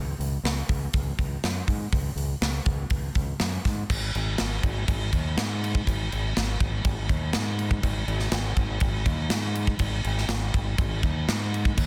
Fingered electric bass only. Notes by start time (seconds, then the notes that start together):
Already playing: C#2
0.19 C#2
0.43 C#2
0.69 C#2
0.94 C#2
1.19 C#2
1.44 F#2
1.68 G#2
1.93 C#2
2.15 C#2
2.41 C#2
2.66 C#2
2.91 C#2
3.15 C#2
3.40 F#2
3.65 G#2
3.90 G#1
4.15 G#1
4.40 G#1
4.63 G#1
4.88 G#1
5.13 D#2
5.37 G#2
5.87 G#1
6.12 G#1
6.37 G#1
6.60 G#1
6.84 G#1
7.09 D#2
7.35 G#2
7.83 G#1
8.08 G#1
8.31 G#1
8.56 G#1
8.82 G#1
9.06 D#2
9.29 G#2
9.80 G#1
10.04 G#1
10.54 G#1
10.79 G#1
11.03 D#2
11.28 G#2
11.77 D#2